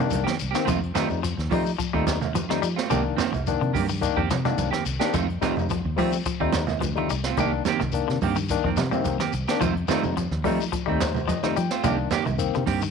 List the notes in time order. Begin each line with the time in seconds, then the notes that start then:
0.00 D#3 G3 A#3 D4
0.10 C2, muted clean electric guitar stroke, closed hi-hat, high conga, shekere
0.24 D#3 A#3 C4 G4, snare
0.37 muted clean electric guitar stroke, closed hi-hat, shekere
0.42 C2
0.51 A#3 C4 G4, snare, closed hi-hat, shekere
0.55 D#3 C4
0.65 F2 D#3 F3 A3 C4 F4, kick, closed hi-hat, low conga, shekere
0.80 muted clean electric guitar stroke, closed hi-hat
0.94 D#3 G3 A3 C4 D#4 F4, muted fingered electric bass stroke, snare, closed hi-hat, high conga, shekere
1.09 F2, muted clean electric guitar stroke, high conga, shekere
1.23 F3, snare, closed hi-hat, shekere
1.37 D#2, muted clean electric guitar stroke, snare
1.50 D#3 F3 G3 A3 C4 D#4 F4, muted clean electric guitar stroke, kick, open hi-hat, high conga, shekere
1.65 muted clean electric guitar stroke, shekere
1.78 F3, muted clean electric guitar stroke, kick, closed hi-hat, shekere
1.93 D#2 D#3 G3 A3 C4 D#4 F4, kick
2.06 muted clean electric guitar stroke, snare, closed hi-hat, high conga, shekere
2.21 snare, low conga, shekere
2.35 F3, muted clean electric guitar stroke, closed hi-hat, high conga, shekere
2.49 D#3 G3 A3 C4 D#4 F4, muted fingered electric bass stroke, snare, closed hi-hat
2.61 F3 G3, muted clean electric guitar stroke, closed hi-hat, shekere
2.76 A3 C4 F4, snare, shekere
2.89 C2 D#3 F3 A#3 C4 D4 G4, kick, closed hi-hat, low conga, shekere
3.04 muted clean electric guitar stroke
3.16 D#3 A#3 C4, snare, closed hi-hat, high conga, shekere
3.32 C2, muted clean electric guitar stroke, closed hi-hat, low conga, shekere
3.47 D#3 A#3 D4, closed hi-hat, high conga, shekere
3.60 C3 D3, muted clean electric guitar stroke, closed hi-hat
3.73 G2 D#3 A#3 C4 G4, kick, open hi-hat, high conga, shekere
3.88 D#3, muted clean electric guitar stroke, shekere
4.01 D#3 A#3 D4, muted clean electric guitar stroke, kick, closed hi-hat, shekere
4.17 F2 D#3 A#3 C4 G4, kick
4.29 C3 F3, muted clean electric guitar stroke, snare, closed hi-hat, high conga, shekere
4.45 D#3 G3 A#3 D4, snare, closed hi-hat, high conga, low conga, shekere
4.58 C2, muted clean electric guitar stroke, closed hi-hat, high conga, shekere
4.71 D#3 A#3 C4 G4, snare
4.84 C2, muted clean electric guitar stroke, closed hi-hat, shekere
4.99 D#3 A#3 C4 D4 G4, snare, closed hi-hat, shekere
5.13 F2 D#3 F3 A3 C4 F4, kick, closed hi-hat, low conga, shekere
5.28 muted clean electric guitar stroke, closed hi-hat
5.41 D#3 G3 A3 C4 D#4 F4, muted fingered electric bass stroke, kick, snare, closed hi-hat, high conga, shekere
5.57 F2, muted clean electric guitar stroke, low conga, shekere
5.70 F3, kick, closed hi-hat, high conga, shekere
5.85 D#2, muted clean electric guitar stroke
5.96 D#3 F3 G3 A3 C4 F4, kick, open hi-hat, high conga, shekere
6.12 muted clean electric guitar stroke, shekere
6.25 F3, muted clean electric guitar stroke, kick, closed hi-hat, shekere
6.40 D#2 G3 A3 C4 D#4 F4, muted clean electric guitar stroke, kick
6.53 D#2, muted clean electric guitar stroke, snare, closed hi-hat, high conga, shekere
6.67 snare, low conga, shekere
6.80 D2 F3, muted clean electric guitar stroke, closed hi-hat, high conga, shekere
6.96 D#3 G3 A3 C4 D#4 F4, closed hi-hat
7.10 C2 G3, muted clean electric guitar stroke, closed hi-hat, shekere
7.24 A3 C4 F4, snare, shekere
7.37 C2 D#3 G3 A#3 D4 G4, muted clean electric guitar stroke, kick, closed hi-hat, low conga, shekere
7.53 muted clean electric guitar stroke
7.65 D#3 A#3 C4 G4, snare, closed hi-hat, high conga, shekere
7.80 C2 D#3, muted clean electric guitar stroke, snare, closed hi-hat, low conga, shekere
7.92 D#3 A#3 D4, closed hi-hat, shekere
8.08 C3 D3, muted clean electric guitar stroke, snare, closed hi-hat
8.22 G2 D#3 A#3 C4 G4, kick, open hi-hat, high conga, shekere
8.36 D#3, muted clean electric guitar stroke, shekere
8.49 D#3 A#3 D4, muted clean electric guitar stroke, kick, closed hi-hat, shekere
8.64 F2 D#3 A#3 C4, kick
8.76 C3 F3, snare, closed hi-hat, high conga, shekere
8.91 D#3 G3 A#3 C4, closed hi-hat, high conga, low conga, shekere
9.04 C2, muted clean electric guitar stroke, closed hi-hat, high conga, shekere
9.20 D#3 A#3 C4 G4, snare
9.33 C2, muted clean electric guitar stroke, closed hi-hat, shekere
9.48 D#3 A#3 C4 D4 G4, snare, closed hi-hat, shekere
9.60 F2 D#3 F3 A3 C4 F4, kick, closed hi-hat, low conga, shekere
9.75 muted clean electric guitar stroke, closed hi-hat
9.88 D#3 G3 A3 C4 D#4 F4, muted fingered electric bass stroke, snare, closed hi-hat, high conga, shekere
10.03 F2, muted clean electric guitar stroke, high conga, low conga, shekere
10.17 F3, closed hi-hat, high conga, shekere
10.31 D#2, muted clean electric guitar stroke, snare
10.44 D#3 F3 G3 A3 C4 D#4 F4, kick, open hi-hat, high conga, shekere
10.60 muted clean electric guitar stroke, shekere
10.72 F3, muted clean electric guitar stroke, kick, closed hi-hat, shekere
10.86 D#2 D#3 G3 A3 C4 D#4, muted clean electric guitar stroke, kick
11.00 C5, snare, closed hi-hat, high conga, shekere
11.15 high conga, low conga, shekere
11.28 F3 D#5, muted clean electric guitar stroke, closed hi-hat, high conga, shekere
11.43 D#3 G3 A3 C4 D#4 F4, muted fingered electric bass stroke, snare, closed hi-hat
11.56 F3 G3 G5, muted clean electric guitar stroke, closed hi-hat, shekere
11.71 A3 C4 F4, snare, shekere
11.84 C2 D#3 F3 A#3 C4 D4 G4, kick, closed hi-hat, low conga, shekere
11.98 muted clean electric guitar stroke
12.11 D#3 A#3 G4, muted clean electric guitar stroke, snare, closed hi-hat, high conga, shekere
12.25 C2 D#3, muted clean electric guitar stroke, closed hi-hat, low conga, shekere
12.38 D#3 A#3 C4, closed hi-hat, shekere
12.54 C3 D3, muted clean electric guitar stroke, snare, closed hi-hat
12.66 G2 D#3 A#3 C4 G4, kick, snare, open hi-hat, high conga, shekere
12.81 D#3, muted clean electric guitar stroke, shekere